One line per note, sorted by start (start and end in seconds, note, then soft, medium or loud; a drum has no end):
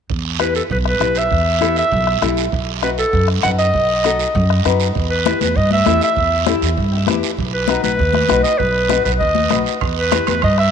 0.10 0.58 E2 medium
0.10 bombo low medium
0.10 long guiro medium
0.39 0.61 E4 medium
0.39 0.61 G4 medium
0.39 0.61 B4 medium
0.39 0.55 B4 medium
0.39 bombo rim medium
0.39 short guiro medium
0.55 0.62 A4 medium
0.55 short guiro medium
0.70 0.95 B1 loud
0.70 0.78 B4 medium
0.70 bombo low medium
0.70 long guiro medium
0.85 1.20 B4 medium
0.85 bombo rim medium
1.00 1.25 B1 medium
1.00 1.21 E4 medium
1.00 1.22 G4 medium
1.00 1.22 B4 medium
1.00 bombo rim medium
1.00 short guiro medium
1.15 1.78 E5 medium
1.15 short guiro medium
1.30 1.80 E2 medium
1.30 bombo low medium
1.30 long guiro medium
1.60 1.82 E4 medium
1.60 1.82 G4 medium
1.60 1.83 A4 medium
1.60 bombo rim medium
1.60 short guiro medium
1.76 2.34 E5 medium
1.76 short guiro medium
1.92 2.16 B1 medium
1.92 bombo low medium
1.92 long guiro medium
2.07 bombo rim medium
2.22 2.46 B1 medium
2.22 2.43 E4 medium
2.22 2.43 G4 medium
2.22 2.44 A4 medium
2.22 bombo rim medium
2.22 short guiro medium
2.37 short guiro medium
2.52 3.01 B1 medium
2.52 bombo low medium
2.52 long guiro medium
2.82 3.04 D#4 medium
2.82 3.04 F#4 medium
2.82 2.90 B4 medium
2.82 3.05 B4 medium
2.82 bombo rim medium
2.82 short guiro medium
2.98 3.27 A4 medium
2.98 short guiro medium
3.13 3.37 F#2 medium
3.13 bombo low medium
3.13 long guiro medium
3.28 bombo rim medium
3.43 3.68 F#2 medium
3.43 3.65 D#4 medium
3.43 3.65 F#4 medium
3.43 3.65 B4 medium
3.43 3.50 F#5 medium
3.43 bombo rim medium
3.43 short guiro medium
3.59 4.76 D#5 medium
3.59 short guiro medium
3.74 4.23 B1 medium
3.74 bombo low medium
3.74 long guiro medium
4.04 4.26 D#4 medium
4.04 4.26 F#4 medium
4.04 4.26 A4 medium
4.04 bombo rim medium
4.04 short guiro medium
4.19 short guiro medium
4.35 4.59 F#2 loud
4.35 bombo low medium
4.35 long guiro medium
4.50 bombo rim medium
4.65 4.89 F#2 medium
4.65 4.86 D#4 medium
4.65 4.86 F#4 medium
4.65 4.87 B4 medium
4.65 bombo rim medium
4.65 short guiro medium
4.80 short guiro medium
4.95 5.32 E2 medium
4.95 bombo low medium
4.95 high conga soft
4.95 long guiro medium
5.10 5.39 B4 medium
5.26 5.47 E4 medium
5.26 5.47 G4 medium
5.26 5.48 B4 medium
5.26 bombo rim medium
5.26 high conga medium
5.26 short guiro medium
5.41 5.53 E2 medium
5.41 5.58 B4 medium
5.41 high conga medium
5.41 short guiro medium
5.56 5.80 G2 medium
5.56 5.71 D#5 medium
5.56 bombo low medium
5.56 high conga soft
5.56 long guiro medium
5.71 6.00 E5 medium
5.71 high conga medium
5.86 5.98 E2 medium
5.86 6.07 E4 medium
5.86 6.08 G4 medium
5.86 6.08 A4 medium
5.86 bombo rim medium
5.86 high conga medium
5.86 short guiro medium
6.01 6.45 E5 medium
6.01 short guiro medium
6.16 6.53 E2 medium
6.16 bombo low medium
6.16 high conga soft
6.16 long guiro medium
6.46 6.69 E4 medium
6.46 6.69 G4 medium
6.46 6.69 A4 medium
6.46 bombo rim medium
6.46 high conga medium
6.46 short guiro medium
6.62 6.74 E2 medium
6.62 short guiro medium
6.77 7.02 G2 medium
6.77 bombo low medium
6.77 high conga soft
6.77 long guiro medium
6.92 6.97 G5 medium
6.97 7.07 E5 medium
7.07 7.19 E2 medium
7.07 7.29 E4 medium
7.07 7.29 G4 medium
7.07 7.29 B4 medium
7.07 bombo rim medium
7.07 high conga medium
7.07 short guiro medium
7.23 short guiro medium
7.37 7.75 B1 medium
7.37 bombo low medium
7.37 high conga soft
7.37 long guiro medium
7.54 7.82 B4 medium
7.68 7.90 D#4 medium
7.68 7.90 F#4 medium
7.68 7.90 B4 medium
7.68 bombo rim medium
7.68 high conga medium
7.68 short guiro medium
7.83 7.96 B1 medium
7.83 8.41 B4 medium
7.83 high conga medium
7.83 short guiro medium
7.99 8.23 D#2 medium
7.99 bombo low medium
7.99 high conga soft
7.99 long guiro medium
8.13 bombo rim medium
8.13 high conga medium
8.29 8.42 B1 medium
8.29 8.50 D#4 medium
8.29 8.50 F#4 medium
8.29 8.51 B4 medium
8.29 bombo rim medium
8.29 high conga medium
8.29 short guiro medium
8.43 8.60 D#5 loud
8.43 short guiro medium
8.58 8.96 B1 medium
8.58 9.04 B4 medium
8.58 bombo low medium
8.58 high conga soft
8.58 long guiro medium
8.89 9.11 D#4 medium
8.89 9.12 F#4 medium
8.89 9.12 B4 medium
8.89 bombo rim medium
8.89 high conga medium
8.89 short guiro medium
9.05 9.17 B1 medium
9.05 9.12 B4 medium
9.05 short guiro medium
9.19 9.45 D#2 medium
9.19 9.62 D#5 medium
9.19 bombo low medium
9.19 high conga soft
9.19 long guiro medium
9.35 high conga medium
9.50 9.64 B1 medium
9.50 9.73 D#4 medium
9.50 9.73 F#4 medium
9.50 9.73 B4 medium
9.50 bombo rim medium
9.50 high conga medium
9.50 short guiro medium
9.66 short guiro medium
9.81 10.18 E2 medium
9.81 bombo low medium
9.81 high conga soft
9.81 high timbale medium
9.81 long guiro medium
9.99 10.26 B4 medium
10.11 10.33 E4 medium
10.11 10.33 G4 medium
10.11 10.33 B4 medium
10.11 bombo rim medium
10.11 high conga medium
10.11 high timbale medium
10.11 short guiro medium
10.27 10.40 E2 medium
10.27 10.42 B4 medium
10.27 high conga medium
10.27 high timbale medium
10.27 short guiro medium
10.42 10.67 G2 medium
10.42 10.57 D#5 medium
10.42 bombo low medium
10.42 high conga soft
10.42 high timbale medium
10.42 long guiro medium
10.58 10.71 E5 loud
10.58 bombo rim medium